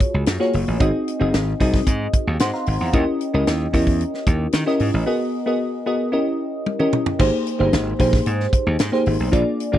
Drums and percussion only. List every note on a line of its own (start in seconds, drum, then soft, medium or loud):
0.00 kick medium
0.00 closed hi-hat medium
0.26 snare loud
0.26 closed hi-hat medium
0.41 snare soft
0.53 open hi-hat medium
0.80 kick loud
0.80 closed hi-hat medium
1.08 closed hi-hat medium
1.34 snare loud
1.34 closed hi-hat medium
1.60 kick medium
1.60 open hi-hat medium
1.74 kick medium
1.74 snare soft
1.87 kick loud
1.87 closed hi-hat medium
2.14 kick loud
2.14 closed hi-hat medium
2.39 snare loud
2.39 closed hi-hat loud
2.54 snare soft
2.66 open hi-hat medium
2.94 kick loud
2.94 closed hi-hat medium
3.21 closed hi-hat medium
3.47 snare loud
3.47 closed hi-hat medium
3.74 kick medium
3.74 open hi-hat medium
3.87 kick medium
4.01 closed hi-hat medium
4.14 snare soft
4.27 kick loud
4.27 closed hi-hat medium
4.52 snare loud
4.52 closed hi-hat loud
4.67 snare soft
4.79 open hi-hat medium
6.66 high tom medium
6.80 mid tom medium
6.93 mid tom medium
7.06 floor tom medium
7.19 kick loud
7.19 crash loud
7.47 closed hi-hat medium
7.73 snare loud
7.73 closed hi-hat medium
8.00 kick medium
8.00 open hi-hat medium
8.13 kick loud
8.13 snare soft
8.26 closed hi-hat medium
8.40 snare soft
8.53 kick loud
8.53 closed hi-hat medium
8.79 snare loud
8.79 closed hi-hat medium
8.93 snare soft
9.06 open hi-hat medium
9.33 kick loud
9.33 closed hi-hat medium
9.60 closed hi-hat medium